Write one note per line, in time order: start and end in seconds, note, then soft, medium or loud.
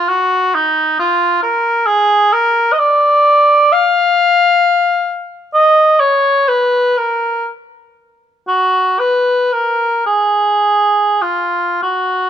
0.00 0.10 F4 medium
0.09 0.56 F#4 medium
0.55 0.99 D#4 medium
0.99 1.42 F4 medium
1.43 1.88 A#4 medium
1.86 2.34 G#4 medium
2.33 2.74 A#4 medium
2.72 2.80 D#5 soft
2.78 3.74 D5 medium
3.72 5.29 F5 medium
5.54 6.01 D#5 medium
6.00 6.50 C#5 medium
6.48 6.99 B4 medium
6.97 7.47 A#4 medium
8.48 9.01 F#4 medium
8.99 9.54 B4 medium
9.53 10.06 A#4 medium
10.06 11.23 G#4 medium
11.22 11.82 F4 soft
11.83 12.30 F#4 medium